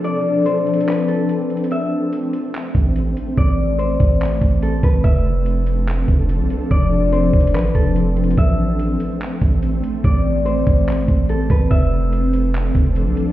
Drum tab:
HH |x-----x--xxxx--x--x--xxx|x-----x--x--x--x--x--x--|x-----x--x--x--x--x--x--|x-----x--x--x--x--x--x--|
CP |------------x-----------|------------x-----------|------------x-----------|------------x-----------|
BD |------------------------|---------------o--------|o--------o-----o-----o--|o--------------o--------|

HH |x-----x--xxxx--x--x--xxx|x-----x--x--x--x--x--x--|x-----x--x--x--x--x--x--|x-----x--x--x--x--x--x--|
CP |------------x-----------|------------x-----------|------------x-----------|------------x-----------|
BD |o--------o-----o--------|o--------------o--------|o--------o-----o-----o--|o--------------o--------|